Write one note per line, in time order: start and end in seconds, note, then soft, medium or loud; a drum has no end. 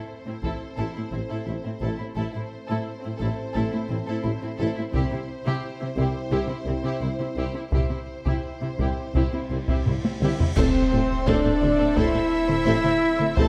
0.00 2.12 C4 soft
0.00 2.12 A4 soft
0.00 2.14 C5 soft
0.26 0.33 A2 soft
0.26 0.33 C4 soft
0.26 0.34 E4 soft
0.42 0.50 A1 soft
0.42 0.50 A2 soft
0.42 0.60 E4 soft
0.42 0.59 A4 soft
0.42 taiko soft
0.77 0.85 A1 soft
0.77 0.85 A2 soft
0.77 0.94 E4 medium
0.77 0.94 A4 soft
0.94 1.03 A2 soft
0.94 1.01 E4 soft
0.94 1.02 E4 soft
1.12 1.19 A1 soft
1.12 1.20 A2 soft
1.12 1.19 C4 soft
1.12 1.19 E4 soft
1.29 1.37 A2 medium
1.29 1.46 E4 soft
1.29 1.45 A4 soft
1.46 1.53 A1 soft
1.46 1.54 A1 soft
1.46 1.55 A2 soft
1.46 1.53 E4 soft
1.46 1.54 E4 soft
1.63 1.72 A2 soft
1.63 1.71 C4 soft
1.63 1.72 E4 soft
1.80 1.88 A1 soft
1.80 1.88 A1 medium
1.80 1.89 A2 soft
1.80 1.98 E4 soft
1.80 1.97 A4 soft
1.98 2.06 A2 soft
1.98 2.05 E4 soft
1.98 2.07 E4 soft
2.15 2.23 A1 medium
2.15 2.23 A1 soft
2.15 2.25 A2 medium
2.15 4.90 C4 medium
2.15 2.33 E4 medium
2.15 2.32 A4 medium
2.15 4.90 A4 medium
2.15 4.89 C5 soft
2.32 2.42 A2 soft
2.32 2.40 E4 soft
2.32 2.41 E4 soft
2.67 2.77 A2 medium
2.67 2.85 E4 medium
2.67 2.84 A4 soft
3.00 3.08 C4 soft
3.05 3.11 A2 soft
3.05 3.12 E4 soft
3.17 3.27 A1 medium
3.17 3.37 E4 soft
3.17 3.35 A4 medium
3.21 3.28 A2 medium
3.53 3.62 A1 soft
3.53 3.62 A1 medium
3.53 3.63 A2 medium
3.53 3.72 E4 medium
3.53 3.70 A4 medium
3.72 3.80 A2 soft
3.72 3.79 E4 soft
3.72 3.80 E4 soft
3.89 3.97 A1 soft
3.89 3.98 A2 soft
3.89 3.96 C4 soft
3.89 3.98 E4 soft
4.06 4.15 A2 medium
4.06 4.23 E4 medium
4.06 4.23 A4 medium
4.23 4.31 A1 soft
4.23 4.32 A1 soft
4.23 4.32 A2 soft
4.23 4.30 E4 soft
4.23 4.31 E4 soft
4.41 4.50 A2 soft
4.41 4.48 C4 soft
4.41 4.50 E4 soft
4.57 4.66 A1 medium
4.57 4.67 A1 medium
4.57 4.67 A2 medium
4.57 4.75 E4 medium
4.57 4.74 A4 medium
4.76 4.84 A2 soft
4.76 4.83 E4 soft
4.76 4.84 E4 soft
4.93 5.00 C2 medium
4.93 5.01 C2 medium
4.93 5.01 C3 medium
4.93 7.56 C4 medium
4.93 5.10 E4 medium
4.93 7.56 E4 medium
4.93 5.10 G4 medium
4.93 7.68 C5 medium
4.93 taiko medium
5.12 5.18 C3 medium
5.12 5.18 E4 soft
5.12 5.19 E4 soft
5.46 5.53 C3 medium
5.46 5.62 E4 medium
5.46 5.62 G4 medium
5.81 5.88 C3 soft
5.81 5.88 C4 soft
5.81 5.87 E4 soft
5.96 6.03 C2 medium
5.96 6.04 C2 medium
5.96 6.04 C3 medium
5.96 6.13 E4 medium
5.96 6.13 G4 medium
5.96 taiko soft
6.31 6.38 C2 soft
6.31 6.38 C2 medium
6.31 6.39 C3 medium
6.31 6.48 E4 medium
6.31 6.47 G4 medium
6.48 6.56 C3 soft
6.48 6.55 E4 soft
6.48 6.56 E4 soft
6.65 6.72 C2 soft
6.65 6.73 C2 soft
6.65 6.74 C3 soft
6.65 6.73 C4 medium
6.65 6.74 E4 soft
6.84 6.91 C3 medium
6.84 7.00 E4 medium
6.84 7.00 G4 medium
7.01 7.08 C2 soft
7.01 7.08 C3 soft
7.01 7.08 E4 soft
7.01 7.10 E4 soft
7.19 7.26 C3 soft
7.19 7.27 C4 soft
7.19 7.26 E4 soft
7.36 7.43 C2 medium
7.36 7.44 C2 soft
7.36 7.43 C3 medium
7.36 7.54 E4 medium
7.36 7.53 G4 medium
7.54 7.61 C3 soft
7.54 7.62 E4 soft
7.71 7.79 C2 medium
7.71 7.79 C3 medium
7.71 10.21 C4 medium
7.71 10.21 E4 medium
7.71 7.89 E4 medium
7.71 7.90 G4 soft
7.71 10.32 C5 soft
7.71 taiko medium
7.71 cymbal swell soft
7.90 7.97 C3 soft
7.90 7.97 E4 soft
7.90 7.98 E4 soft
8.25 8.33 C3 medium
8.25 8.43 E4 medium
8.25 8.42 G4 soft
8.25 taiko medium
8.62 8.69 C3 soft
8.62 8.69 C4 soft
8.62 8.69 E4 soft
8.79 8.86 C2 medium
8.79 8.87 C2 medium
8.79 8.86 C3 soft
8.79 8.96 E4 soft
8.79 8.96 G4 soft
8.79 taiko medium
9.15 9.22 C2 soft
9.15 9.22 C3 medium
9.15 9.32 E4 medium
9.15 9.32 G4 medium
9.15 taiko medium
9.33 9.40 C3 soft
9.33 9.40 E4 soft
9.50 9.57 C2 soft
9.50 9.58 C2 soft
9.50 9.58 C3 soft
9.50 9.58 C4 soft
9.50 9.58 E4 soft
9.68 9.76 C3 medium
9.68 9.85 E4 medium
9.68 9.85 G4 medium
9.68 taiko medium
9.86 9.93 C2 soft
9.86 9.94 C3 soft
9.86 9.94 E4 soft
9.86 taiko low-mid medium
10.04 10.12 C3 soft
10.04 10.12 C4 soft
10.04 10.11 E4 soft
10.04 taiko high medium
10.21 10.28 C2 medium
10.21 10.28 C2 soft
10.21 10.29 C3 medium
10.21 10.39 E4 medium
10.21 10.38 G4 medium
10.21 taiko mid medium
10.39 10.47 C3 soft
10.39 10.46 E4 soft
10.39 10.47 E4 soft
10.39 taiko low medium
10.56 10.63 A1 medium
10.56 10.64 A1 medium
10.56 10.64 A2 medium
10.56 11.29 C4 medium
10.56 13.34 C4 medium
10.56 10.74 C4 medium
10.56 11.24 C4 loud
10.56 13.33 A4 medium
10.56 10.73 A4 medium
10.56 11.23 C5 medium
10.56 13.33 C5 medium
10.56 10.73 C5 medium
10.56 13.34 E5 medium
10.56 concert bass drum loud
10.56 taiko medium
10.56 crash medium
10.56 impact medium
10.92 10.99 A1 medium
10.92 11.00 A2 medium
10.92 10.99 C4 medium
10.92 10.99 A4 medium
10.92 10.99 C5 medium
11.26 11.34 A1 medium
11.26 11.34 A2 medium
11.26 11.43 C4 loud
11.26 11.96 D4 medium
11.26 11.99 D4 medium
11.26 11.43 A4 medium
11.26 11.42 C5 medium
11.26 11.96 D5 medium
11.26 taiko medium
11.44 11.51 A2 medium
11.44 11.51 C4 medium
11.44 11.51 A4 medium
11.44 11.51 C5 medium
11.61 11.68 A1 medium
11.61 11.69 A1 medium
11.61 11.69 A2 medium
11.61 11.69 C4 medium
11.61 11.69 A4 medium
11.61 11.68 C5 medium
11.61 taiko mid medium
11.78 11.87 A2 medium
11.78 11.86 C4 medium
11.78 11.86 A4 medium
11.78 11.85 C5 medium
11.96 12.03 A1 medium
11.96 12.05 A1 medium
11.96 12.04 A2 medium
11.96 12.13 C4 medium
11.96 13.36 E4 loud
11.96 13.38 E4 loud
11.96 12.13 A4 medium
11.96 12.11 C5 medium
11.96 13.38 E5 loud
11.96 taiko medium
12.12 12.21 A2 medium
12.12 12.21 C4 medium
12.12 12.21 A4 medium
12.12 12.20 C5 medium
12.47 12.56 A2 medium
12.47 12.56 C4 medium
12.47 12.56 A4 medium
12.47 12.54 C5 medium
12.47 taiko mid medium
12.63 12.73 A1 medium
12.63 12.73 A2 medium
12.63 12.82 C4 medium
12.63 12.82 A4 medium
12.63 12.81 C5 medium
12.82 12.91 A2 medium
12.82 12.91 C4 medium
12.82 12.91 A4 medium
12.82 12.90 C5 medium
12.82 taiko mid medium
13.16 13.26 A2 medium
13.16 13.24 C5 medium
13.16 taiko mid medium
13.20 13.27 C4 medium
13.20 13.27 A4 medium
13.35 13.44 A1 medium
13.35 13.45 A1 medium
13.35 13.45 A2 medium
13.35 13.48 C4 medium
13.35 13.48 A4 loud
13.35 13.48 C5 medium
13.35 13.48 C5 loud
13.35 13.48 E5 medium
13.35 13.48 A5 loud
13.35 taiko loud